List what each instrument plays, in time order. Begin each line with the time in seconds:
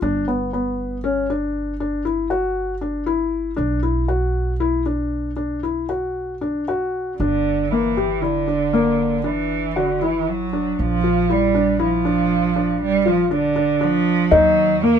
0.02 upright bass G1, felt piano D4
0.28 felt piano B3
0.53 felt piano B3
1.04 felt piano C#4
1.30 felt piano D4
1.80 felt piano D4
2.05 felt piano E4
2.30 felt piano F#4
2.81 felt piano D4
3.06 felt piano E4
3.56 upright bass B1, felt piano D4
3.83 felt piano E4
4.08 felt piano F#4
4.60 felt piano E4
4.86 felt piano D4
5.36 felt piano D4
5.63 felt piano E4
5.89 felt piano F#4
6.41 felt piano D4
6.68 felt piano F#4
7.18 upright bass G1, cello D3, felt piano D4
7.70 cello E3, felt piano A#3
7.97 felt piano G4
8.22 cello D3, felt piano E4
8.48 felt piano D4
8.73 felt piano A#3
9.24 cello E3, felt piano D4
9.76 cello D3, felt piano F#4
10.02 cello E3, felt piano E4
10.28 cello F#3
10.53 felt piano D4
10.79 upright bass A#1, cello F3
11.04 felt piano F4
11.30 cello G3, felt piano E4
11.55 felt piano D4
11.79 cello F3, felt piano E4
12.05 felt piano D4
12.56 felt piano D4
12.81 cello G3
13.06 cello F3, felt piano F4
13.31 cello D3, felt piano D4
13.56 felt piano D4
13.81 cello F3, felt piano D4
14.31 upright bass D#2, cello F#3, felt piano D#4
14.83 cello A#3, felt piano A#3